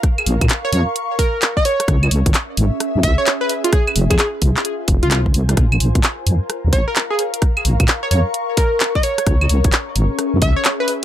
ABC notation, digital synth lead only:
X:1
M:4/4
L:1/16
Q:"Swing 16ths" 1/4=130
K:Bbm
V:1 name="Digital synth lead"
z4 z d d z3 B3 e d2- | d2 z8 _f d z _c z =F | A z2 A A z6 F F z3 | z8 z2 d B z A z2 |
z4 z d d z3 B3 e d2- | d2 z8 _f d z _c z2 |]